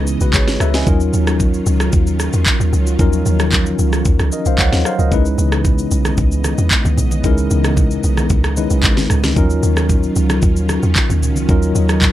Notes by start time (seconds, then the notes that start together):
Already playing: C#2 C#3 E3 G#3 B3 C#4 D#4 E4 B4 D#5
0.07 shaker
0.21 B1 F#4 B4, shaker
0.34 G#1 G#4 C#5, kick, clap, shaker
0.48 snare, shaker
0.60 C#2 B4 E5, cross-stick, shaker
0.74 D#5 G#5, snare, shaker
0.86 D#2 D#3 F#3 C#4 D#4 F4 A#4, kick, shaker
1.00 shaker
1.13 D#2, shaker
1.27 cross-stick, shaker
1.40 kick, shaker
1.54 shaker
1.66 C#2, shaker
1.80 cross-stick, shaker
1.93 D#2, kick, shaker
2.07 shaker
2.20 cross-stick, shaker
2.33 E2, shaker
2.46 kick, clap, shaker
2.60 D#2, shaker
2.73 C#2, shaker
2.87 shaker
2.99 D#2 F3 C#4 D#4 F4 A#4, kick, shaker
3.05 F#3
3.13 shaker
3.26 D#2, shaker
3.40 cross-stick, shaker
3.52 kick, clap, shaker
3.66 shaker
3.79 C#2, shaker
3.93 cross-stick, shaker
4.05 D#2, kick, shaker
4.19 C#2, cross-stick, shaker
4.32 A#4 D#5, shaker
4.46 B1 C5 F5, shaker
4.59 C#2 C#5 F#5, kick, clap, shaker
4.72 D#2, snare, shaker
4.85 C5 F5, cross-stick, shaker
4.99 C#2 A#4 D#5, shaker
5.12 C#2 C#3 E3 G#3 B3 C#4 D#4 E4 B4 D#5, kick, shaker
5.25 shaker
5.38 C#2, shaker
5.52 cross-stick, shaker
5.65 kick, low conga, shaker
5.78 shaker
5.91 B1, shaker
6.05 cross-stick, high conga, shaker
6.17 C#2, kick, low conga, shaker
6.32 shaker
6.44 cross-stick, high conga, shaker
6.58 E2, shaker
6.71 kick, clap, shaker
6.85 C#2, high conga, shaker
6.97 B1, low conga, shaker
7.11 high conga, shaker
7.24 C#2 G#3 C#4 D#4 E4 A#4, kick, shaker
7.38 shaker
7.51 C#2, shaker
7.64 cross-stick, shaker
7.77 kick, low conga, shaker
7.91 shaker
8.04 B1, shaker
8.17 cross-stick, high conga, shaker
8.30 C#2, kick, low conga, shaker
8.44 cross-stick, shaker
8.57 G#3 C#4 D#4 E4 B4, high conga, shaker
8.70 B1, shaker
8.83 G#1, kick, clap, shaker
8.97 snare, high conga, shaker
9.10 C#2, cross-stick, low conga, shaker
9.24 snare, high conga, shaker
9.36 D#2 D#3 F3 F#3 C#4 D#4 F4 A#4, kick, shaker
9.43 F#3
9.50 shaker
9.63 D#2, shaker
9.77 cross-stick, shaker
9.89 kick, low conga, shaker
10.03 shaker
10.16 C#2, shaker
10.30 cross-stick, high conga, shaker
10.42 D#2, kick, low conga, shaker
10.56 shaker
10.69 cross-stick, high conga, shaker
10.83 E2, shaker
10.96 kick, clap, shaker
11.10 D#2, high conga, shaker
11.22 C#2, low conga, shaker
11.36 high conga, shaker
11.49 D#2 F#3 C#4 D#4 F4 A#4, kick, shaker
11.62 shaker
11.75 D#2, shaker
11.89 cross-stick, shaker
12.02 kick, clap, low conga, shaker